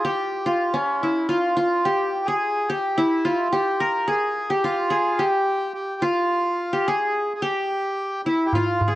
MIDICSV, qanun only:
0, 0, Header, 1, 2, 480
1, 0, Start_track
1, 0, Tempo, 557103
1, 1590, Time_signature, 4, 2, 24, 8
1, 7713, End_track
2, 0, Start_track
2, 0, Title_t, "Qanun"
2, 0, Program_c, 0, 107
2, 0, Note_on_c, 0, 60, 60
2, 0, Note_on_c, 0, 65, 76
2, 40, Note_on_c, 0, 67, 73
2, 106, Note_off_c, 0, 60, 0
2, 392, Note_off_c, 0, 65, 0
2, 396, Note_on_c, 0, 65, 73
2, 635, Note_on_c, 0, 61, 76
2, 887, Note_on_c, 0, 64, 69
2, 938, Note_off_c, 0, 65, 0
2, 1110, Note_on_c, 0, 65, 78
2, 1122, Note_off_c, 0, 67, 0
2, 1161, Note_off_c, 0, 64, 0
2, 1346, Note_off_c, 0, 65, 0
2, 1350, Note_on_c, 0, 65, 77
2, 1596, Note_on_c, 0, 67, 79
2, 1955, Note_off_c, 0, 61, 0
2, 1964, Note_on_c, 0, 68, 78
2, 2016, Note_off_c, 0, 67, 0
2, 2322, Note_on_c, 0, 67, 78
2, 2374, Note_off_c, 0, 68, 0
2, 2509, Note_off_c, 0, 65, 0
2, 2564, Note_on_c, 0, 64, 85
2, 2799, Note_on_c, 0, 65, 78
2, 2851, Note_off_c, 0, 64, 0
2, 3034, Note_off_c, 0, 67, 0
2, 3037, Note_on_c, 0, 67, 82
2, 3277, Note_on_c, 0, 70, 83
2, 3512, Note_on_c, 0, 68, 78
2, 3564, Note_off_c, 0, 67, 0
2, 3877, Note_on_c, 0, 67, 76
2, 3929, Note_off_c, 0, 68, 0
2, 3958, Note_off_c, 0, 65, 0
2, 3999, Note_on_c, 0, 65, 81
2, 4225, Note_on_c, 0, 68, 85
2, 4251, Note_off_c, 0, 70, 0
2, 4276, Note_off_c, 0, 67, 0
2, 4472, Note_on_c, 0, 67, 83
2, 4524, Note_off_c, 0, 68, 0
2, 5158, Note_off_c, 0, 65, 0
2, 5186, Note_on_c, 0, 65, 79
2, 5554, Note_off_c, 0, 67, 0
2, 5797, Note_on_c, 0, 67, 74
2, 5926, Note_on_c, 0, 68, 84
2, 5978, Note_off_c, 0, 67, 0
2, 6346, Note_off_c, 0, 65, 0
2, 6394, Note_on_c, 0, 67, 87
2, 6445, Note_off_c, 0, 68, 0
2, 7118, Note_on_c, 0, 64, 66
2, 7369, Note_on_c, 0, 65, 77
2, 7420, Note_off_c, 0, 64, 0
2, 7475, Note_off_c, 0, 67, 0
2, 7649, Note_on_c, 0, 68, 57
2, 7713, Note_off_c, 0, 65, 0
2, 7713, Note_off_c, 0, 68, 0
2, 7713, End_track
0, 0, End_of_file